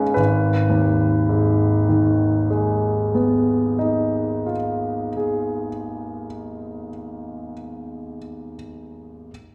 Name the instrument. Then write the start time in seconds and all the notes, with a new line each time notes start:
grand piano
Already playing: G#1 G#3 C#4 D#4 F4 G#4 B4
0.14 G#1 B4
0.70 D#2
1.29 G#2
1.89 D#3
2.50 G#3
3.15 B3
3.79 D#4
4.46 F4
5.17 G#4